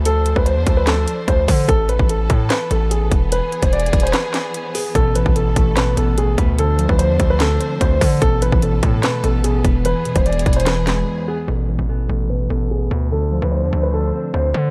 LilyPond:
<<
  \new Staff \with { instrumentName = "Grand piano" } { \time 4/4 \key a \minor \tempo 4 = 147 a'8. b'16 c''8. b'16 a'4 c''4 | a'8 b'8 a'4 b'8 a'8 gis'8 r8 | b'8. c''16 d''8. c''16 b'4. gis'8 | a'8 b'8 a'4 b'8 a'8 gis'8 r8 |
a'8. b'16 c''8. b'16 a'4 c''4 | a'8 b'8 a'4 b'8 a'8 gis'8 r8 | b'8. c''16 d''8. c''16 b'4. gis'8 | a'8 b'8 a'4 b'8 a'8 gis'8 r8 |
a'8. b'16 c''8. b'16 a'4 c''4 | }
  \new Staff \with { instrumentName = "String section" } { \time 4/4 \key a \minor << { c''1 | a'1 | gis'1 | a'1 |
c''1 | a'1 | gis'1 | a'1 |
c''1 | } \\ { <f d'>1 | <e b>1~ | <e b>1~ | <e b>1 |
<f d'>1 | <e b>1~ | <e b>1 | <e b>1 |
<f d'>1 | } >> }
  \new Staff \with { instrumentName = "Clean electric guitar" } { \clef bass \time 4/4 \key a \minor r1 | r1 | r1 | b,8 e8 b,8 a8 b,8 b8 b,8 b'8 |
d8 f8 d8 a8 d8 c'8 d8 d'8 | b,8 e8 b,8 a8 b,8 b8 b,8 b'8 | e,8 b,8 e,8 e8 e,8 gis8 e,8 b8 | b,8 e8 b,8 a8 b,8 b8 b,8 b'8 |
d8 f8 d8 a8 d8 c'8 d8 d'8 | }
  \new Staff \with { instrumentName = "808-style bass" } { \clef bass \time 4/4 \key a \minor d,8. d,8 e,16 d,4 r8 d,8 d8 | a,,8. a,,8. a,8 r8 a,,4 e,,8~ | e,,16 r8 e,,8. e,,8 r2 | a,,8. a,,8. a,,4 a,,4 d,8~ |
d,8. d,8 e,16 d,4 r8 d,8 d8 | a,,8. a,,8. a,8 r8 a,,4 e,,8~ | e,,16 r8 e,,8. e,,4. r4 | a,,8. a,,8. a,,4 a,,4 d,8~ |
d,8. d,8 e,16 d,4 r8 d,8 d8 | }
  \new DrumStaff \with { instrumentName = "Drums" } \drummode { \time 4/4 hh8 hh16 bd16 hh8 <hh bd>8 <hc hh sn>8 hh8 <hh bd>8 <hho bd>8 | <hh bd>8 hh16 bd16 hh8 <hh bd>8 <hc hh sn>8 hh8 hh8 <hh bd>8 | hh8 hh16 <hh bd>16 \tuplet 3/2 { hh16 hh16 hh16 <hh bd>16 hh16 hh16 } <hc hh sn>8 <hc hh sn>8 hh8 hho8 | <hh bd>8 hh16 bd16 hh8 <hh bd>8 <hc hh sn>8 hh8 hh8 <hh bd>8 |
hh8 hh16 bd16 hh8 <hh bd>8 <hc hh sn>8 hh8 <hh bd>8 <hho bd>8 | <hh bd>8 hh16 bd16 hh8 <hh bd>8 <hc hh sn>8 hh8 hh8 <hh bd>8 | hh8 hh16 <hh bd>16 \tuplet 3/2 { hh16 hh16 hh16 <hh bd>16 hh16 hh16 } <hc hh sn>8 <hc hh sn>8 r4 | r4 r4 r4 r4 |
r4 r4 r4 r4 | }
>>